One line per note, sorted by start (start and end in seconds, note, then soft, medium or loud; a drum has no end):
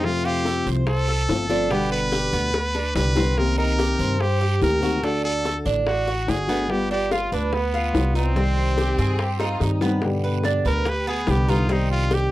0.00 0.60 F2 medium
0.00 0.86 C3 medium
0.00 0.24 C4 medium
0.00 high bongo medium
0.05 0.86 F3 medium
0.05 0.86 A3 medium
0.05 0.87 C4 medium
0.05 0.27 F4 loud
0.05 0.87 F4 medium
0.05 long guiro medium
0.25 0.45 F4 medium
0.25 0.67 G4 loud
0.25 high bongo soft
0.45 0.66 A4 medium
0.45 high bongo medium
0.45 short guiro medium
0.66 1.25 C2 medium
0.66 1.07 C5 medium
0.66 short guiro medium
0.87 1.73 A4 loud
0.87 muted nylon-string guitar stroke medium
0.87 high bongo medium
0.87 long guiro medium
1.08 1.49 A4 medium
1.08 high bongo soft
1.29 2.27 G1 medium
1.29 1.49 F3 medium
1.29 1.49 A3 medium
1.29 1.49 C4 medium
1.29 1.48 F4 medium
1.29 high bongo soft
1.29 low bongo medium
1.29 short guiro medium
1.49 1.70 F3 medium
1.49 1.70 A3 medium
1.49 1.70 C4 medium
1.49 1.70 D4 medium
1.49 1.70 F4 medium
1.49 high bongo soft
1.49 short guiro medium
1.70 2.52 B2 medium
1.70 2.52 D3 medium
1.70 2.54 G3 medium
1.70 2.11 B3 medium
1.70 2.53 B3 medium
1.70 1.91 G4 loud
1.70 2.54 G4 medium
1.70 high bongo medium
1.70 long guiro medium
1.92 2.92 B4 loud
1.92 high bongo soft
2.12 2.32 G4 medium
2.12 high bongo medium
2.12 short guiro medium
2.33 2.91 D2 medium
2.33 2.73 B3 medium
2.33 short guiro medium
2.54 muted nylon-string guitar stroke medium
2.54 high bongo medium
2.54 long guiro medium
2.75 3.15 D4 medium
2.75 high bongo medium
2.95 3.93 C2 medium
2.95 3.15 D3 medium
2.95 3.15 G3 medium
2.95 3.15 B3 medium
2.95 3.14 G4 medium
2.95 3.39 B4 loud
2.95 low bongo medium
2.95 short guiro medium
3.15 3.37 D3 medium
3.15 3.36 G3 medium
3.15 3.36 B3 medium
3.15 3.56 C4 medium
3.15 3.36 G4 medium
3.15 low bongo medium
3.15 short guiro medium
3.36 4.19 C3 medium
3.36 4.19 D#3 medium
3.36 4.19 A#3 medium
3.36 4.19 C4 medium
3.36 4.20 G4 medium
3.36 3.58 A#4 loud
3.36 high bongo medium
3.36 long guiro medium
3.58 3.78 D#4 medium
3.58 4.22 A#4 loud
3.58 high bongo soft
3.78 3.99 G4 medium
3.78 high bongo medium
3.78 short guiro medium
3.99 4.57 G2 medium
3.99 4.40 C5 medium
3.99 short guiro medium
4.20 4.62 G4 loud
4.20 muted nylon-string guitar stroke medium
4.20 high bongo medium
4.20 long guiro medium
4.41 4.81 G4 medium
4.41 high bongo soft
4.61 5.59 D2 medium
4.61 4.81 D#3 medium
4.61 4.81 A#3 medium
4.61 4.81 C4 medium
4.61 4.80 G4 medium
4.61 5.05 A#4 loud
4.61 high bongo soft
4.61 low bongo medium
4.61 short guiro medium
4.81 5.02 D#3 medium
4.81 5.02 A#3 medium
4.81 5.02 C4 medium
4.81 5.03 F#4 medium
4.81 5.02 G4 medium
4.81 high bongo soft
4.81 short guiro medium
5.02 5.85 D3 medium
5.02 5.85 A3 medium
5.02 5.44 D4 medium
5.02 5.86 D4 medium
5.02 5.86 F#4 medium
5.02 5.24 A4 loud
5.02 high bongo medium
5.02 long guiro medium
5.25 5.57 A4 loud
5.25 high bongo soft
5.45 5.65 A4 medium
5.45 high bongo medium
5.45 short guiro medium
5.66 6.24 A1 medium
5.66 6.06 D4 medium
5.66 short guiro medium
5.86 6.31 F#4 medium
5.86 muted nylon-string guitar stroke medium
5.86 high bongo medium
5.86 long guiro medium
6.07 6.48 F#4 medium
6.07 high bongo soft
6.27 7.26 G1 medium
6.27 6.47 D3 medium
6.27 6.48 A3 soft
6.27 6.48 D4 medium
6.27 6.47 F#4 medium
6.27 6.72 G#4 medium
6.27 high bongo soft
6.27 low bongo medium
6.27 short guiro medium
6.48 6.68 A3 medium
6.48 6.89 B3 medium
6.48 6.69 D4 medium
6.48 6.68 F#4 medium
6.48 high bongo soft
6.48 short guiro medium
6.69 7.52 G3 medium
6.69 7.52 B3 medium
6.69 7.52 F4 medium
6.69 6.91 G4 medium
6.69 high bongo medium
6.69 long guiro medium
6.91 7.11 D4 medium
6.91 7.14 G4 medium
6.91 high bongo soft
7.11 7.31 F4 medium
7.11 7.33 F4 medium
7.11 high bongo medium
7.11 short guiro medium
7.32 7.90 D2 medium
7.32 7.55 D4 medium
7.32 7.73 B4 medium
7.32 short guiro medium
7.52 8.16 B3 medium
7.52 muted nylon-string guitar stroke medium
7.52 high bongo medium
7.52 long guiro medium
7.74 8.14 F4 medium
7.74 high bongo soft
7.93 8.92 C2 medium
7.93 8.14 G3 medium
7.93 8.14 B3 medium
7.93 8.13 F4 medium
7.93 high bongo soft
7.93 low bongo medium
7.93 short guiro medium
8.14 8.36 B3 medium
8.14 9.58 C4 medium
8.14 8.35 D#4 medium
8.14 8.35 F4 medium
8.14 high bongo soft
8.14 short guiro medium
8.34 9.18 C3 medium
8.34 9.18 D#3 medium
8.34 9.18 G3 medium
8.34 8.77 C4 medium
8.34 9.18 C4 medium
8.34 9.18 G4 medium
8.34 high bongo medium
8.34 long guiro medium
8.57 high bongo soft
8.78 8.98 G4 medium
8.78 8.97 G4 loud
8.78 high bongo medium
8.78 short guiro medium
8.98 9.57 G2 medium
8.98 9.39 C4 medium
8.98 9.20 G#4 loud
8.98 short guiro medium
9.19 9.40 G4 medium
9.19 muted nylon-string guitar stroke medium
9.19 high bongo medium
9.19 long guiro medium
9.40 9.81 D#4 medium
9.40 9.60 F4 medium
9.40 high bongo medium
9.60 10.59 G2 medium
9.60 9.81 D#3 medium
9.60 9.81 G3 medium
9.60 9.81 C4 medium
9.60 10.03 D#4 medium
9.60 9.80 G4 medium
9.60 high bongo medium
9.60 short guiro medium
9.81 10.02 D#3 soft
9.81 10.02 G3 medium
9.81 10.02 B3 medium
9.81 10.02 C4 medium
9.81 10.02 G4 medium
9.81 low bongo medium
9.81 short guiro medium
10.02 10.85 B2 medium
10.02 10.85 D3 medium
10.02 10.86 G3 medium
10.02 10.85 B3 medium
10.02 10.86 G4 medium
10.02 high bongo medium
10.02 long guiro medium
10.24 10.44 B4 medium
10.44 10.65 D4 medium
10.44 high bongo medium
10.44 short guiro medium
10.65 11.23 D2 medium
10.65 10.90 A#4 medium
10.65 10.85 B4 medium
10.65 short guiro medium
10.85 11.06 G4 medium
10.85 11.08 B4 medium
10.85 muted nylon-string guitar stroke medium
10.85 high bongo medium
10.85 long guiro medium
11.07 11.47 B3 medium
11.07 11.32 G#4 medium
11.27 12.26 C2 medium
11.27 11.47 D3 medium
11.27 11.48 G3 medium
11.27 11.48 B3 medium
11.27 11.47 G4 medium
11.27 11.51 G4 medium
11.27 high bongo medium
11.27 low bongo medium
11.27 short guiro medium
11.48 11.69 D3 soft
11.48 11.69 G3 medium
11.48 11.69 B3 medium
11.48 11.69 D#4 medium
11.48 11.74 F4 medium
11.48 11.68 G4 medium
11.48 short guiro medium
11.69 12.31 C3 medium
11.69 12.31 D#3 medium
11.69 12.31 G3 medium
11.69 12.10 C4 medium
11.69 12.31 C4 medium
11.69 11.91 D#4 medium
11.69 12.31 G4 medium
11.69 high bongo medium
11.69 long guiro medium
11.92 12.16 F4 medium
12.11 12.31 G4 medium
12.11 high bongo medium
12.11 short guiro medium